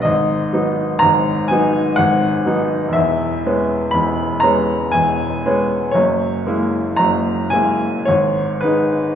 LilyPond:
<<
  \new Staff \with { instrumentName = "Upright piano" } { \time 3/4 \key gis \minor \tempo 4 = 60 dis''4 ais''8 gis''8 fis''4 | e''4 b''8 ais''8 gis''4 | cis''4 ais''8 gis''8 cis''8 b'8 | }
  \new Staff \with { instrumentName = "Upright piano" } { \clef bass \time 3/4 \key gis \minor <gis,, gis,>8 <fis b dis'>8 <gis,, gis,>8 <fis b dis'>8 <gis,, gis,>8 <fis b dis'>8 | <e,, e,>8 <gis b cis'>8 <e,, e,>8 <gis b cis'>8 <e,, e,>8 <gis b cis'>8 | <fis,, fis,>8 <gis ais e'>8 <fis,, fis,>8 <gis ais e'>8 <gis,, gis,>8 <gis dis'>8 | }
>>